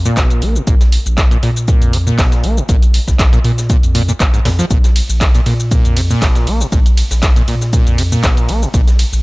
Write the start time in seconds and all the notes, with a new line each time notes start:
0.05 A#2, shaker
0.17 A#1 B2, kick, snare, clap, closed hi-hat, shaker
0.30 A#2, closed hi-hat, shaker
0.42 A#1 A#3, open hi-hat, shaker
0.56 A#2, shaker
0.67 A#1 A#2, kick, closed hi-hat, shaker
0.81 snare, closed hi-hat, shaker
0.92 open hi-hat, shaker
1.06 A#1, closed hi-hat, shaker
1.18 kick, snare, clap, closed hi-hat, shaker
1.31 A#2, closed hi-hat, shaker
1.43 A#2, snare, open hi-hat, shaker
1.56 closed hi-hat, shaker
1.68 A#2, kick, closed hi-hat, shaker
1.82 F2, closed hi-hat, shaker
1.93 C#3, open hi-hat, shaker
2.07 A#2, shaker
2.18 A#1 B2, kick, snare, clap, closed hi-hat, open hi-hat, shaker
2.32 A#2, snare, closed hi-hat, shaker
2.44 A#1 A#3, open hi-hat, shaker
2.57 A#2, shaker
2.69 A#1 A#2, kick, closed hi-hat, shaker
2.82 closed hi-hat, shaker
2.94 open hi-hat, shaker
3.08 A#1, kick, snare, closed hi-hat, shaker
3.19 kick, snare, clap, closed hi-hat, shaker
3.33 A#2, closed hi-hat, shaker
3.44 A#2, open hi-hat, shaker
3.58 snare, closed hi-hat, shaker
3.70 A#2, kick, closed hi-hat, shaker
3.83 F2, closed hi-hat, shaker
3.95 A#2, open hi-hat, shaker
4.08 A#2, closed hi-hat, shaker
4.20 A#1 A#2, kick, clap, closed hi-hat, shaker
4.34 G#2, closed hi-hat, shaker
4.45 F2 A#2, snare, open hi-hat
4.59 F3, snare, closed hi-hat, shaker
4.71 A#1 A#2, kick, closed hi-hat, shaker
4.84 snare, closed hi-hat, shaker
4.96 open hi-hat, ride, shaker
5.09 A#1, closed hi-hat, shaker
5.21 kick, snare, clap, closed hi-hat, shaker
5.35 A#2, closed hi-hat, shaker
5.46 A#2, snare, open hi-hat, ride, shaker
5.60 closed hi-hat, shaker
5.71 A#2, kick, closed hi-hat, shaker
5.85 F2, closed hi-hat, shaker
5.97 C#3, open hi-hat, ride, shaker
6.10 A#2, shaker
6.22 A#1 B2, kick, snare, clap, closed hi-hat, open hi-hat, shaker
6.35 A#2, snare, closed hi-hat, shaker
6.47 A#1 A#3, open hi-hat, ride, shaker
6.61 A#2, shaker
6.72 A#1 A#2, kick, closed hi-hat, shaker
6.86 closed hi-hat, shaker
6.97 open hi-hat, ride, shaker
7.11 A#1, snare, closed hi-hat, shaker
7.23 kick, snare, clap, closed hi-hat, shaker
7.36 A#2, closed hi-hat, shaker
7.48 A#2, open hi-hat, ride, shaker
7.61 snare, shaker
7.73 A#2, kick, closed hi-hat, shaker
7.87 F2, closed hi-hat, shaker
7.98 C#3, open hi-hat, ride, shaker
8.12 A#2, shaker
8.23 A#1 B2, kick, snare, clap, closed hi-hat, shaker
8.37 A#2, closed hi-hat, shaker
8.49 A#1 A#3, open hi-hat, ride, shaker
8.62 A#2, shaker
8.74 A#1 A#2, kick, closed hi-hat, shaker
8.87 snare, closed hi-hat, shaker
8.99 open hi-hat, ride, shaker
9.13 A#1, closed hi-hat, shaker